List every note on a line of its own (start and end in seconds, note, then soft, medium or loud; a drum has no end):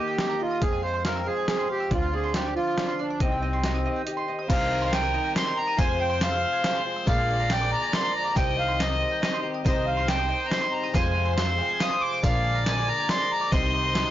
0.00 0.62 D#3 medium
0.00 0.59 A#3 medium
0.00 0.19 D#4 soft
0.00 0.42 G4 medium
0.00 0.60 G4 medium
0.00 0.17 D#5 medium
0.00 0.29 D#6 medium
0.07 0.18 G5 medium
0.18 0.41 D#4 medium
0.18 0.39 D#5 medium
0.18 snare medium
0.18 closed hi-hat soft
0.29 0.50 A#5 medium
0.40 0.60 D#4 soft
0.40 0.63 F4 medium
0.40 0.61 D#5 medium
0.51 0.62 D#6 medium
0.61 1.27 F2 medium
0.61 1.92 F2 medium
0.61 0.85 G#3 medium
0.61 1.06 C4 medium
0.61 0.82 G#4 medium
0.61 0.81 F5 medium
0.61 kick loud
0.61 closed hi-hat medium
0.72 0.93 G#5 medium
0.82 1.92 G#3 soft
0.82 1.03 C5 medium
0.82 1.04 F5 medium
0.94 1.15 C6 medium
1.05 1.49 C4 medium
1.05 1.27 A#4 medium
1.05 1.25 F5 medium
1.05 snare medium
1.05 closed hi-hat medium
1.16 1.58 E6 medium
1.26 1.89 F3 medium
1.26 1.47 G#4 medium
1.26 1.36 F5 medium
1.37 1.47 G#5 medium
1.48 1.70 C4 medium
1.48 1.68 G#4 medium
1.48 1.68 F5 medium
1.48 snare medium
1.48 closed hi-hat medium
1.58 1.80 C6 medium
1.69 1.93 C4 soft
1.69 1.92 G4 medium
1.69 1.91 F5 medium
1.80 1.91 E6 medium
1.91 2.56 D2 loud
1.91 3.18 D3 medium
1.91 2.14 C4 medium
1.91 2.34 D4 medium
1.91 2.14 F4 medium
1.91 2.12 D5 medium
1.91 kick loud
1.91 closed hi-hat medium
2.02 2.45 F5 medium
2.13 3.22 C4 soft
2.13 2.34 G#4 medium
2.13 2.34 D5 medium
2.24 2.46 C6 medium
2.34 2.77 D4 medium
2.34 2.54 G4 medium
2.34 2.55 D5 medium
2.34 snare medium
2.34 closed hi-hat medium
2.46 2.88 D6 medium
2.55 3.18 F3 medium
2.55 3.00 F4 medium
2.55 2.77 D5 medium
2.67 3.10 F5 medium
2.78 2.99 D4 medium
2.78 2.98 D5 medium
2.78 snare medium
2.78 closed hi-hat medium
2.88 3.10 C6 medium
2.98 3.21 D4 medium
2.98 3.19 D4 medium
2.98 3.20 D5 medium
3.10 3.21 D6 medium
3.20 3.85 C2 medium
3.20 3.86 C3 medium
3.20 4.02 C4 medium
3.20 3.42 C4 medium
3.20 3.64 D#4 medium
3.20 3.41 D#5 medium
3.20 kick loud
3.20 closed hi-hat medium
3.24 4.06 G4 medium
3.32 3.74 G5 medium
3.42 4.48 C4 soft
3.42 3.63 D#5 medium
3.53 3.74 C6 medium
3.64 4.28 D#4 medium
3.64 3.84 D#5 medium
3.64 snare medium
3.64 closed hi-hat soft
3.74 4.17 D#6 medium
3.85 5.79 D#3 medium
3.85 4.05 D#5 medium
3.96 4.39 G5 medium
4.06 4.47 G4 medium
4.06 4.27 D#5 medium
4.06 closed hi-hat medium
4.17 4.38 C6 medium
4.28 4.47 D#4 medium
4.28 4.49 D#5 medium
4.39 4.50 C5 soft
4.39 4.49 D#6 medium
4.47 5.74 C2 medium
4.47 5.15 C2 medium
4.47 5.74 C3 medium
4.47 4.92 C3 medium
4.47 4.91 D#3 medium
4.47 5.78 D#3 medium
4.47 5.75 G3 medium
4.47 5.78 G3 medium
4.47 5.75 C4 medium
4.47 4.92 C4 medium
4.47 5.78 C4 medium
4.47 5.76 D#4 medium
4.47 4.92 D#4 medium
4.47 5.78 G4 medium
4.47 4.93 G4 medium
4.47 5.77 A#4 medium
4.47 5.76 C5 medium
4.47 4.70 D#5 medium
4.47 4.83 F5 medium
4.47 kick loud
4.47 closed hi-hat medium
4.47 crash loud
4.47 tambourine loud
4.60 5.03 G5 medium
4.71 4.92 D#5 medium
4.82 4.92 F5 medium
4.82 5.03 C6 medium
4.82 tambourine soft
4.92 5.14 D#3 medium
4.92 5.14 C4 medium
4.92 5.14 D#4 medium
4.92 5.13 G4 medium
4.92 5.13 D#5 medium
4.92 5.33 G5 medium
4.92 snare medium
4.92 closed hi-hat medium
4.92 tambourine loud
5.03 5.45 D#6 medium
5.14 5.34 C4 soft
5.14 5.35 D#4 soft
5.14 5.35 G4 soft
5.14 5.34 D#5 medium
5.24 5.67 G5 medium
5.24 tambourine soft
5.35 5.56 D#3 medium
5.35 5.57 C4 medium
5.35 5.56 D#4 medium
5.35 5.55 G4 medium
5.35 5.77 D#5 medium
5.35 5.58 C6 loud
5.35 snare medium
5.35 closed hi-hat medium
5.35 tambourine loud
5.45 5.67 C6 medium
5.56 5.77 C4 soft
5.56 5.78 D#4 soft
5.56 5.78 G4 soft
5.56 5.79 A#5 loud
5.67 5.78 D#6 medium
5.67 tambourine soft
5.76 7.03 F1 medium
5.76 6.20 F2 medium
5.76 7.03 F2 medium
5.76 6.43 F2 medium
5.76 6.21 C3 medium
5.76 7.06 C3 medium
5.76 6.18 F3 medium
5.76 7.06 F3 medium
5.76 7.04 G#3 medium
5.76 6.20 G#3 medium
5.76 8.34 G#3 medium
5.76 7.04 C4 medium
5.76 6.19 C4 medium
5.76 8.34 F4 medium
5.76 7.05 F4 medium
5.76 6.21 G#4 medium
5.76 7.08 C5 loud
5.76 7.05 C5 medium
5.76 5.98 F5 medium
5.76 5.99 G#5 loud
5.76 kick loud
5.76 closed hi-hat medium
5.76 tambourine loud
5.88 6.32 G#5 medium
5.99 6.19 F5 medium
5.99 6.22 G5 medium
6.10 6.31 C6 medium
6.10 tambourine soft
6.19 6.41 F3 medium
6.19 6.41 G#3 medium
6.19 6.41 C4 medium
6.19 6.39 G#4 medium
6.19 6.41 F5 medium
6.19 snare medium
6.19 closed hi-hat medium
6.19 tambourine loud
6.23 6.83 F5 medium
6.31 6.75 E6 medium
6.40 6.60 F3 soft
6.40 6.61 G#3 soft
6.40 6.62 C4 soft
6.40 6.63 G#4 medium
6.40 6.63 F5 medium
6.53 6.96 G#5 medium
6.53 tambourine soft
6.61 6.84 F3 medium
6.61 6.85 G#3 medium
6.61 6.84 C4 medium
6.61 6.83 G#4 medium
6.61 7.07 F5 medium
6.61 snare medium
6.61 closed hi-hat medium
6.61 tambourine loud
6.75 6.96 C6 medium
6.84 7.05 F3 soft
6.84 7.06 G#3 soft
6.84 7.07 C4 soft
6.84 7.06 G#4 medium
6.96 7.07 E6 medium
6.96 tambourine soft
7.05 8.32 A#1 medium
7.05 7.72 A#1 loud
7.05 7.50 A#2 medium
7.05 8.32 A#2 medium
7.05 8.35 D3 medium
7.05 7.48 F3 medium
7.05 8.33 G#3 medium
7.05 7.49 G#3 medium
7.05 8.34 A#3 medium
7.05 8.33 D4 medium
7.05 7.50 D4 medium
7.05 8.34 F4 medium
7.05 7.50 G#4 medium
7.05 8.34 A#4 medium
7.05 8.38 D5 loud
7.05 7.28 D5 medium
7.05 7.52 F5 medium
7.05 kick loud
7.05 closed hi-hat medium
7.05 tambourine medium
7.18 7.39 G#5 medium
7.29 7.49 D5 medium
7.39 7.81 A#5 medium
7.39 tambourine soft
7.49 7.71 F3 medium
7.49 7.72 G#3 medium
7.49 7.71 D4 medium
7.49 7.70 G#4 medium
7.49 7.70 D5 medium
7.49 7.71 G5 medium
7.49 snare medium
7.49 closed hi-hat medium
7.49 tambourine medium
7.61 8.04 D6 medium
7.71 7.92 G#3 soft
7.71 7.93 D4 soft
7.71 7.93 G#4 medium
7.71 7.91 D5 medium
7.71 7.94 A#5 loud
7.82 8.03 G#5 medium
7.82 tambourine soft
7.92 8.35 F3 medium
7.92 8.36 G#3 medium
7.92 8.36 D4 medium
7.92 8.37 G#4 medium
7.92 8.35 D5 medium
7.92 8.13 C6 loud
7.92 snare medium
7.92 closed hi-hat medium
7.92 tambourine medium
8.03 8.36 A#5 medium
8.16 8.35 A#5 medium
8.25 8.36 D6 medium
8.25 tambourine soft
8.35 9.61 C2 medium
8.35 9.01 C2 medium
8.35 8.79 C3 medium
8.35 9.61 C3 medium
8.35 10.91 D#3 medium
8.35 8.77 D#3 medium
8.35 9.62 G3 medium
8.35 10.91 G3 medium
8.35 10.91 C4 medium
8.35 9.62 C4 medium
8.35 8.79 C4 medium
8.35 8.80 D#4 medium
8.35 9.63 D#4 medium
8.35 10.91 G4 medium
8.35 8.80 G4 medium
8.35 9.63 C5 medium
8.35 8.57 D#5 medium
8.35 9.44 D#5 loud
8.35 8.56 G5 loud
8.35 kick loud
8.35 closed hi-hat medium
8.35 tambourine loud
8.47 8.90 G5 medium
8.58 8.78 D#5 medium
8.58 8.80 F5 medium
8.68 8.89 C6 medium
8.68 tambourine soft
8.79 9.20 D#3 medium
8.79 9.21 C4 medium
8.79 9.22 D#4 medium
8.79 9.22 G4 medium
8.79 8.99 D#5 medium
8.79 9.40 D#5 medium
8.79 snare medium
8.79 closed hi-hat medium
8.79 tambourine medium
8.90 9.33 D#6 medium
9.00 9.21 D#5 medium
9.11 9.54 G5 medium
9.21 9.43 D#3 medium
9.21 9.43 C4 medium
9.21 9.43 D#4 medium
9.21 9.42 G4 medium
9.21 9.63 D#5 medium
9.21 snare medium
9.21 closed hi-hat medium
9.21 tambourine medium
9.33 9.54 C6 medium
9.43 9.64 C4 soft
9.43 9.65 D#4 medium
9.43 9.65 G4 medium
9.54 9.65 D#6 medium
9.64 10.90 C2 medium
9.64 10.30 C2 medium
9.64 10.08 C3 medium
9.64 10.90 C3 medium
9.64 10.06 D#3 medium
9.64 10.91 G3 medium
9.64 10.91 C4 medium
9.64 10.08 C4 medium
9.64 10.92 D#4 medium
9.64 10.08 D#4 medium
9.64 10.09 G4 medium
9.64 10.90 C5 loud
9.64 10.92 C5 medium
9.64 9.86 D#5 medium
9.64 kick loud
9.64 closed hi-hat medium
9.64 tambourine medium
9.75 10.19 G5 medium
9.87 10.07 D#5 medium
9.87 10.09 F5 medium
9.97 10.19 C6 medium
9.97 tambourine soft
10.07 10.49 D#3 medium
10.07 10.50 C4 medium
10.07 10.51 D#4 medium
10.07 10.51 G4 medium
10.07 10.28 D#5 medium
10.07 10.47 G5 medium
10.07 snare medium
10.07 closed hi-hat medium
10.07 tambourine medium
10.19 10.61 D#6 medium
10.29 10.50 D#5 medium
10.40 10.83 G5 medium
10.40 tambourine soft
10.46 10.51 A#5 medium
10.50 10.94 D#3 medium
10.50 10.94 C4 medium
10.50 10.95 D#4 medium
10.50 10.95 G4 medium
10.50 10.93 D#5 medium
10.50 10.73 C6 medium
10.50 snare medium
10.50 closed hi-hat medium
10.50 tambourine loud
10.61 10.83 C6 medium
10.71 10.94 A#5 medium
10.83 10.94 D#6 medium
10.83 tambourine soft
10.93 12.19 F1 medium
10.93 11.37 F2 medium
10.93 11.59 F2 loud
10.93 12.19 F2 medium
10.93 12.22 C3 medium
10.93 11.37 C3 medium
10.93 12.22 F3 medium
10.93 11.37 F3 medium
10.93 12.20 G#3 medium
10.93 13.49 G#3 medium
10.93 11.38 G#3 medium
10.93 12.20 C4 medium
10.93 11.38 C4 medium
10.93 13.49 F4 medium
10.93 12.21 F4 medium
10.93 11.39 G#4 medium
10.93 12.19 C5 medium
10.93 12.21 C5 medium
10.93 11.14 F5 medium
10.93 11.34 G#5 medium
10.93 kick loud
10.93 closed hi-hat medium
10.93 tambourine medium
11.04 11.48 G#5 medium
11.15 11.36 F5 medium
11.25 11.47 C6 medium
11.25 tambourine soft
11.37 11.59 F3 medium
11.37 11.59 G#3 medium
11.37 11.59 C4 medium
11.37 11.57 G#4 medium
11.37 11.57 F5 medium
11.37 11.81 C6 medium
11.37 snare medium
11.37 closed hi-hat medium
11.37 tambourine loud
11.47 11.90 E6 medium
11.58 11.79 F3 soft
11.58 11.80 G#3 soft
11.58 11.81 C4 soft
11.58 11.80 G#4 soft
11.58 11.78 F5 medium
11.69 12.12 G#5 medium
11.79 12.23 F3 medium
11.79 12.23 G#3 medium
11.79 12.24 C4 medium
11.79 12.24 G#4 medium
11.79 12.22 F5 medium
11.79 12.02 D#6 loud
11.79 snare medium
11.79 closed hi-hat medium
11.79 tambourine medium
11.91 12.11 C6 medium
12.01 12.23 D6 loud
12.12 12.23 E6 medium
12.12 tambourine soft
12.22 13.48 A#1 medium
12.22 12.88 A#1 loud
12.22 13.48 A#2 medium
12.22 12.66 A#2 medium
12.22 13.51 D3 medium
12.22 12.65 F3 medium
12.22 13.49 G#3 medium
12.22 12.66 G#3 medium
12.22 13.51 A#3 medium
12.22 13.49 D4 medium
12.22 12.66 D4 medium
12.22 13.50 F4 medium
12.22 12.67 G#4 medium
12.22 13.50 A#4 medium
12.22 12.43 D5 medium
12.22 13.53 D5 loud
12.22 12.63 F5 medium
12.22 kick loud
12.22 closed hi-hat medium
12.22 tambourine loud
12.34 12.55 G#5 medium
12.44 12.65 D5 medium
12.55 12.98 A#5 medium
12.55 tambourine soft
12.66 12.88 F3 medium
12.66 12.88 G#3 medium
12.66 12.88 D4 medium
12.66 12.87 G#4 medium
12.66 12.86 D5 medium
12.66 12.89 G#5 medium
12.66 snare medium
12.66 closed hi-hat medium
12.66 tambourine medium
12.77 13.20 D6 medium
12.88 13.09 G#3 soft
12.88 13.10 D4 soft
12.88 13.09 G#4 medium
12.88 13.08 D5 medium
12.88 13.10 A#5 loud
12.99 13.19 G#5 medium
12.99 tambourine soft
13.09 13.52 F3 medium
13.09 13.52 G#3 medium
13.09 13.52 D4 medium
13.09 13.53 G#4 medium
13.09 13.51 D5 medium
13.09 13.32 C6 loud
13.09 snare medium
13.09 closed hi-hat medium
13.09 tambourine medium
13.20 13.52 A#5 medium
13.32 13.53 A#5 medium
13.41 13.52 D6 medium
13.41 tambourine soft
13.51 14.11 C2 medium
13.51 14.01 C2 loud
13.51 13.95 C3 medium
13.51 14.11 C3 medium
13.51 13.93 D#3 medium
13.51 14.11 D#3 medium
13.51 14.11 G3 medium
13.51 14.11 C4 medium
13.51 13.94 C4 medium
13.51 14.11 C4 medium
13.51 13.95 D#4 medium
13.51 14.11 D#4 medium
13.51 14.11 G4 medium
13.51 13.96 G4 medium
13.51 14.11 C5 medium
13.51 14.11 D#5 loud
13.51 13.72 D#5 medium
13.51 14.11 C6 medium
13.51 kick loud
13.51 closed hi-hat medium
13.51 tambourine medium
13.63 14.06 G5 medium
13.74 13.94 D#5 medium
13.84 14.05 C6 medium
13.84 tambourine soft
13.94 14.11 D#3 medium
13.94 14.11 C4 medium
13.94 14.11 D#4 medium
13.94 14.11 G4 medium
13.94 14.11 D#5 medium
13.94 snare medium
13.94 closed hi-hat medium
13.94 tambourine medium
14.06 14.11 D#6 medium
14.06 tambourine soft